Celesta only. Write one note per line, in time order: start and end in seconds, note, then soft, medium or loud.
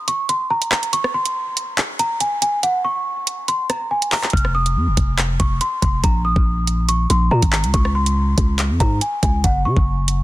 0.08 0.24 C#6 medium
0.29 0.46 C6 medium
0.50 0.67 A#5 medium
0.72 0.88 A#5 medium
0.93 1.10 C#6 medium
1.14 1.74 C6 medium
1.99 2.16 A#5 medium
2.21 2.37 G#5 medium
2.42 2.58 G#5 medium
2.63 2.80 F#5 medium
2.85 3.44 C#6 medium
3.48 3.65 C6 medium
3.70 3.86 A#5 medium
3.91 4.07 G#5 medium
4.12 4.29 A#5 medium
4.33 4.50 F6 medium
4.55 5.15 D#6 medium
5.40 5.56 C#6 medium
5.61 5.78 C6 medium
5.82 5.99 C6 medium
6.04 6.20 A#5 medium
6.25 6.85 D#6 medium
6.89 7.05 C#6 medium
7.10 7.27 C6 medium
7.31 7.48 A#5 medium
7.53 7.69 A#5 medium
7.74 7.90 C#6 medium
7.95 8.55 C6 medium
8.80 8.97 A#5 medium
9.01 9.18 G#5 medium
9.23 9.39 G#5 medium
9.44 9.61 F#5 medium
9.65 10.23 C#6 medium